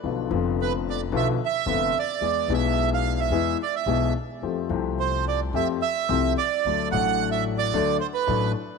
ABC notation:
X:1
M:4/4
L:1/16
Q:1/4=110
K:Flyd
V:1 name="Bandoneon"
z4 B2 d2 e2 e4 d2- | d2 e3 f2 e3 d e3 z2 | z4 c2 d2 e2 e4 d2- | d2 ^f3 e2 d3 c B3 z2 |]
V:2 name="Upright piano" clef=bass
[B,,,B,,D,F,B,F]2 [F,,,F,,D,F,B,F]6 [B,,,B,,D,F,B,F]2 z2 [F,,,F,,D,F,B,F]2 z2 | [E,,E,^G,B,^G]2 [B,,,B,,E,G,B,G]6 [E,,E,G,B,G]2 z2 [B,,,B,,E,G,B,G]2 z2 | [F,,F,A,CG]2 [C,,C,F,A,CG]6 [F,,F,A,CG]2 z2 [C,,C,F,A,CG]2 z2 | [D,,D,^F,A,DA]2 [A,,,A,,F,A,DA]6 [D,,D,F,A,DA]2 z2 [A,,,A,,F,A,DA]2 z2 |]
V:3 name="Upright bass" clef=bass
B,,,2 F,,,6 B,,,2 z2 F,,,2 z2 | E,,2 B,,,6 E,,2 z2 B,,,2 z2 | F,,2 C,,6 F,,2 z2 C,,2 z2 | D,,2 A,,,6 D,,2 z2 A,,,2 z2 |]